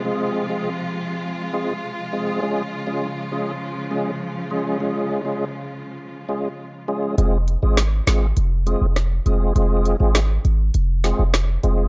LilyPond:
<<
  \new Staff \with { instrumentName = "Tonewheel organ" } { \time 4/4 \key f \minor \tempo 4 = 101 <aes c' f' aes'>8. <aes c' f' aes'>16 r4. <aes c' f' aes'>16 r8. <aes c' f' aes'>8 | <aes des' f' aes'>16 r8 <aes des' f' aes'>16 r8 <aes des' f' aes'>16 r8. <aes des' f' aes'>16 r8. <aes des' f' aes'>8 | <aes des' f' aes'>8. <aes des' f' aes'>16 r4. <aes des' f' aes'>16 r8. <aes des' f' aes'>8 | <aes c' f' aes'>16 r8 <aes c' f' aes'>16 r8 <aes c' f' aes'>16 r8. <aes c' f' aes'>16 r8. <aes c' f' aes'>8 |
<aes c' f' aes'>8. <aes c' f' aes'>16 r4. <aes c' f' aes'>16 r8. <aes c' f' aes'>8 | }
  \new Staff \with { instrumentName = "String section" } { \clef bass \time 4/4 \key f \minor << { <aes f'>1~ | <aes f'>1~ | <aes f'>1 | r1 |
r1 | } \\ { <c f>1 | <des f>1~ | <des f>1 | r1 |
r1 | } >> }
  \new Staff \with { instrumentName = "808-style bass" } { \clef bass \time 4/4 \key f \minor r1 | r1 | r1 | f,,8. aes,,8. aes,,8 f,,8. f,,8. f,,8 |
f,,8. aes,,8. aes,,8 f,,8. f,,8. f,,8 | }
  \new DrumStaff \with { instrumentName = "Drums" } \drummode { \time 4/4 r4 r4 r4 r4 | r4 r4 r4 r4 | r4 r4 r4 r4 | hh8 hh8 <hh ss sn>8 <hh sn>8 hh8 hh8 <hh ss sn>8 hh8 |
hh8 hh8 <hh ss sn>8 hh8 hh8 <hh sn>8 <hh ss sn>8 hh8 | }
>>